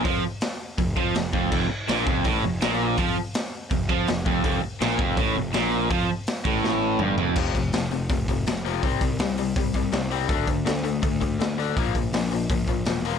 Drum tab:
CC |--------|x-------|--------|--------|
HH |o-o-o-o-|--o-o-o-|o-o-o-o-|o-o-o-o-|
SD |--o---o-|--o---o-|--o---o-|--o---o-|
T2 |--------|--------|--------|--------|
FT |--------|--------|--------|--------|
BD |o---oo-o|o--oo---|o---oo-o|o--oo---|

CC |--------|x-------|--------|--------|
HH |o-o-----|-ooooooo|oooooooo|oooooooo|
SD |--o-o---|--o---o-|--o---o-|--o---o-|
T2 |------o-|--------|--------|--------|
FT |-------o|--------|--------|--------|
BD |o--o----|oo--oo--|oo--oo--|oo--oo--|

CC |--------|
HH |oooooooo|
SD |--o---o-|
T2 |--------|
FT |--------|
BD |oo--oo--|